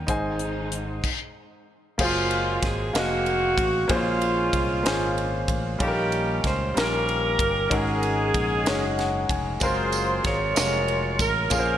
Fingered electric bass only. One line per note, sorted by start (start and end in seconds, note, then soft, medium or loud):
0.09 1.00 G#1 medium
1.99 2.59 F#1 medium
2.63 2.92 G#1 medium
2.95 3.54 F1 medium
3.58 3.87 A1 medium
3.90 4.49 A#1 loud
4.54 4.83 C2 medium
4.86 5.45 G#1 medium
5.49 5.78 A1 medium
5.80 6.40 A#1 loud
6.44 6.73 C#2 medium
6.77 7.36 A#1 medium
7.39 7.68 G1 medium
7.72 8.31 G#1 loud
8.35 8.64 A#1 medium
8.68 9.27 F#1 medium
9.30 9.59 F1 medium
9.62 10.21 F#1 medium
10.25 10.54 G#1 medium
10.58 11.17 F1 medium
11.20 11.49 A1 medium
11.52 11.78 A#1 loud